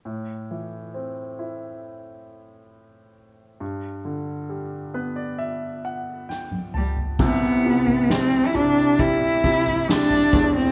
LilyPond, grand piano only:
<<
  \new Staff \with { instrumentName = "Grand piano" } { \time 4/4 \key c \lydian \tempo 4 = 67 r1 | r4. b'16 d''16 e''8 fis''8 g''8 a''8 | r1 | }
  \new Staff \with { instrumentName = "Grand piano" } { \clef bass \time 4/4 \key c \lydian a,8 e8 c'8 e'2 r8 | g,8 d8 g8 b2 r8 | <c, c>8 c8 g8 c8 g8 c8 g8 <e,, e,>8 | }
>>